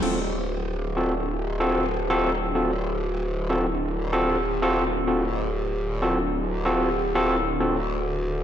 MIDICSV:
0, 0, Header, 1, 4, 480
1, 0, Start_track
1, 0, Tempo, 631579
1, 19, Time_signature, 4, 2, 24, 8
1, 6412, End_track
2, 0, Start_track
2, 0, Title_t, "Tine electric piano"
2, 0, Program_c, 0, 4
2, 16, Note_on_c, 0, 60, 65
2, 17, Note_on_c, 0, 65, 60
2, 17, Note_on_c, 0, 66, 57
2, 17, Note_on_c, 0, 69, 69
2, 136, Note_off_c, 0, 60, 0
2, 136, Note_off_c, 0, 65, 0
2, 136, Note_off_c, 0, 66, 0
2, 136, Note_off_c, 0, 69, 0
2, 735, Note_on_c, 0, 60, 69
2, 735, Note_on_c, 0, 66, 64
2, 736, Note_on_c, 0, 65, 62
2, 736, Note_on_c, 0, 69, 77
2, 855, Note_off_c, 0, 60, 0
2, 855, Note_off_c, 0, 66, 0
2, 856, Note_off_c, 0, 65, 0
2, 856, Note_off_c, 0, 69, 0
2, 1217, Note_on_c, 0, 65, 73
2, 1218, Note_on_c, 0, 66, 73
2, 1218, Note_on_c, 0, 69, 89
2, 1219, Note_on_c, 0, 60, 84
2, 1394, Note_off_c, 0, 60, 0
2, 1394, Note_off_c, 0, 65, 0
2, 1394, Note_off_c, 0, 66, 0
2, 1394, Note_off_c, 0, 69, 0
2, 1595, Note_on_c, 0, 60, 89
2, 1595, Note_on_c, 0, 66, 74
2, 1595, Note_on_c, 0, 69, 98
2, 1597, Note_on_c, 0, 65, 78
2, 1749, Note_off_c, 0, 60, 0
2, 1749, Note_off_c, 0, 66, 0
2, 1749, Note_off_c, 0, 69, 0
2, 1750, Note_off_c, 0, 65, 0
2, 1938, Note_on_c, 0, 60, 67
2, 1939, Note_on_c, 0, 65, 60
2, 1939, Note_on_c, 0, 69, 72
2, 1940, Note_on_c, 0, 66, 61
2, 2057, Note_off_c, 0, 60, 0
2, 2057, Note_off_c, 0, 65, 0
2, 2057, Note_off_c, 0, 66, 0
2, 2057, Note_off_c, 0, 69, 0
2, 2659, Note_on_c, 0, 60, 69
2, 2659, Note_on_c, 0, 65, 63
2, 2659, Note_on_c, 0, 66, 63
2, 2659, Note_on_c, 0, 69, 79
2, 2777, Note_off_c, 0, 60, 0
2, 2777, Note_off_c, 0, 65, 0
2, 2777, Note_off_c, 0, 66, 0
2, 2777, Note_off_c, 0, 69, 0
2, 3138, Note_on_c, 0, 60, 81
2, 3138, Note_on_c, 0, 65, 71
2, 3138, Note_on_c, 0, 66, 74
2, 3138, Note_on_c, 0, 69, 93
2, 3314, Note_off_c, 0, 60, 0
2, 3314, Note_off_c, 0, 65, 0
2, 3314, Note_off_c, 0, 66, 0
2, 3314, Note_off_c, 0, 69, 0
2, 3514, Note_on_c, 0, 60, 87
2, 3514, Note_on_c, 0, 66, 77
2, 3514, Note_on_c, 0, 69, 94
2, 3515, Note_on_c, 0, 65, 81
2, 3668, Note_off_c, 0, 60, 0
2, 3668, Note_off_c, 0, 69, 0
2, 3669, Note_off_c, 0, 65, 0
2, 3669, Note_off_c, 0, 66, 0
2, 3857, Note_on_c, 0, 60, 67
2, 3857, Note_on_c, 0, 65, 62
2, 3857, Note_on_c, 0, 66, 64
2, 3857, Note_on_c, 0, 69, 72
2, 3976, Note_off_c, 0, 60, 0
2, 3976, Note_off_c, 0, 65, 0
2, 3976, Note_off_c, 0, 66, 0
2, 3976, Note_off_c, 0, 69, 0
2, 4576, Note_on_c, 0, 66, 67
2, 4576, Note_on_c, 0, 69, 78
2, 4577, Note_on_c, 0, 60, 70
2, 4577, Note_on_c, 0, 65, 64
2, 4696, Note_off_c, 0, 60, 0
2, 4696, Note_off_c, 0, 65, 0
2, 4696, Note_off_c, 0, 66, 0
2, 4696, Note_off_c, 0, 69, 0
2, 5056, Note_on_c, 0, 65, 75
2, 5056, Note_on_c, 0, 66, 73
2, 5056, Note_on_c, 0, 69, 87
2, 5057, Note_on_c, 0, 60, 79
2, 5233, Note_off_c, 0, 60, 0
2, 5233, Note_off_c, 0, 65, 0
2, 5233, Note_off_c, 0, 66, 0
2, 5233, Note_off_c, 0, 69, 0
2, 5435, Note_on_c, 0, 60, 86
2, 5435, Note_on_c, 0, 65, 81
2, 5435, Note_on_c, 0, 69, 97
2, 5436, Note_on_c, 0, 66, 76
2, 5589, Note_off_c, 0, 60, 0
2, 5589, Note_off_c, 0, 65, 0
2, 5589, Note_off_c, 0, 66, 0
2, 5589, Note_off_c, 0, 69, 0
2, 5778, Note_on_c, 0, 60, 68
2, 5778, Note_on_c, 0, 65, 62
2, 5778, Note_on_c, 0, 66, 62
2, 5778, Note_on_c, 0, 69, 74
2, 5896, Note_off_c, 0, 60, 0
2, 5896, Note_off_c, 0, 65, 0
2, 5896, Note_off_c, 0, 66, 0
2, 5896, Note_off_c, 0, 69, 0
2, 6412, End_track
3, 0, Start_track
3, 0, Title_t, "Wobble bass"
3, 0, Program_c, 1, 39
3, 17, Note_on_c, 1, 26, 86
3, 6412, Note_off_c, 1, 26, 0
3, 6412, End_track
4, 0, Start_track
4, 0, Title_t, "Drums"
4, 19, Note_on_c, 9, 49, 69
4, 95, Note_off_c, 9, 49, 0
4, 6412, End_track
0, 0, End_of_file